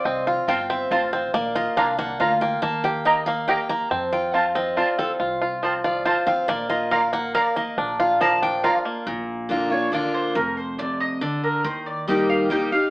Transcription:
<<
  \new Staff \with { instrumentName = "Steel-string acoustic guitar" } { \time 3/4 \key bes \major \tempo 4 = 140 << { ees''8 f''8 g''8 e''8 f''8 c''8 | d''8 ees''8 f''8 ges''8 f''8 g''8 | a''8 g''8 ees''8 f''8 g''8 bes''8 | a''8 g''8 f''8 ees''8 d''8 a'8 |
r4. d''8 c''8 f''8 | d''8 ees''8 f''8 ges''8 f''8 ees''8 | d''8 f''8 a''8 g''8 f''8 r8 | r4 <d bes d' f'>8 <d' f'>8 <d bes d' f'>4 |
r2. | r4 <g bes ees' g'>4 <g bes ees' g'>8 <ees' g'>8 | } \\ { r2. | r2. | r2. | r2. |
r2. | r2. | r2. | bes,2 r4 |
f,4 c4 d4 | ees2 r4 | } >> }
  \new Staff \with { instrumentName = "Mandolin" } { \time 3/4 \key bes \major r4 <c' f' c'' a''>8 r8 <c' f' c'' a''>8 r8 | r4 <bes f' d'' bes''>8 r8 <bes f' d'' bes''>8 r8 | r4 <bes g' ees'' bes''>8 r8 <bes g' ees'' bes''>8 r8 | r4 <c' f' c'' a''>8 r8 <c' f' c'' a''>8 r8 |
r4 <c' f' c'' a''>8 r8 <c' f' c'' a''>8 r8 | r4 <bes f' d'' bes''>8 r8 <bes f' d'' bes''>8 r8 | r4 <bes f' d'' bes''>8 r8 <bes f' d'' bes''>8 r8 | r4. des''8 d''8 c''8 |
bes'8 c''8 d''8 ees''8 d''8 bes'8 | c''8 d''8 ees''8 f''8 g''8 f''8 | }
  \new Staff \with { instrumentName = "Five-string banjo" } { \time 3/4 \key bes \major <c' f'>8 f'8 f'8 c'8 f'8 c'8 | bes8 f'8 d'8 bes8 f'8 bes8 | bes8 g'8 ees'8 bes8 g'8 bes8 | c'8 f'8 f'8 c'8 f'8 c'8 |
f'8 f'8 f8 f'8 f'8 c'8 | bes8 f'8 bes'8 bes8 bes'8 bes8 | d'8 f'8 f8 d'8 f'8 bes8 | r2. |
r2. | r2. | }
  \new Staff \with { instrumentName = "Upright bass" } { \clef bass \time 3/4 \key bes \major c,4 g,,4 a,,4 | bes,,4 c,4 d,4 | ees,2. | f,2. |
c,2. | bes,,2. | bes,,2. | bes,,2. |
f,,2. | ees,2. | }
>>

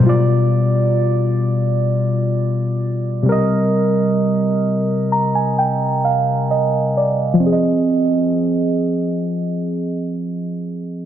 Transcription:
\new Staff \with { instrumentName = "Synth keys" } { \time 4/4 \key f \dorian \tempo 4 = 65 << { r1 | r4. bes''16 aes''16 g''8 f''8 ees''8 d''8 | r1 | } \\ { <b, g f' d''>2.~ <b, g f' d''>8 <c g bes' ees''>8~ | <c g bes' ees''>2.~ <c g bes' ees''>8 r8 | <f c' aes' ees''>1 | } >> }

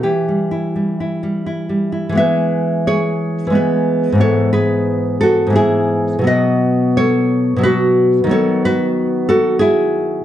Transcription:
\new Staff \with { instrumentName = "Nylon-string guitar" } { \time 3/4 \key e \minor \tempo 4 = 89 << { g'2 r4 | \key e \major <b' e''>4 <gis' cis''>4 <gis' b'>4 | <a' cis''>8 <gis' b'>4 <fis' a'>8 <e' gis'>4 | <b' dis''>4 <a' cis''>4 <fis' b'>4 |
<a' cis''>8 <fis' b'>4 <fis' a'>8 <e' gis'>4 | } \\ { \tuplet 3/2 { e8 g8 e'8 g8 e'8 g8 e'8 g8 e'8 } | <e gis b>2 <e gis b>4 | <gis, e b>2 <gis, e b>4 | <b, fis b>2 <b, fis b>4 |
<dis fis b>2. | } >> }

